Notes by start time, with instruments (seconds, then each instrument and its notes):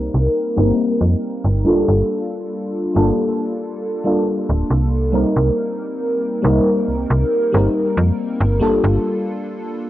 Already playing: fm bass C2, fm electric piano G3 A#3 C4 D#4 A#4
0.14 fm bass C2
0.56 fm bass G1, fm electric piano G3 A#3 C4 D#4 A#4
1.01 fm bass F2
1.45 fm bass G1
1.64 fm bass G1, fm electric piano G3 A#3 D4 F4 A4
1.88 fm bass G1
2.94 fm bass G1, fm electric piano G3 A#3 D4 F4 A4
4.04 fm electric piano G3 A#3 D4 F4 A4
4.49 fm bass D1
4.70 fm bass C2
5.12 fm electric piano G3 A#3 C4 D#4 A#4
5.36 fm bass C2
6.42 fm bass C2, fm electric piano G3 A#3 C4 D#4 A#4
6.88 fm bass C2
7.10 fm bass C2
7.52 fm bass G1, fm electric piano G3 A#3 C4 D#4 A#4
7.97 fm bass F2
8.40 fm bass G1
8.60 fm electric piano G3 A#3 D4 F4 A4
8.84 fm bass G1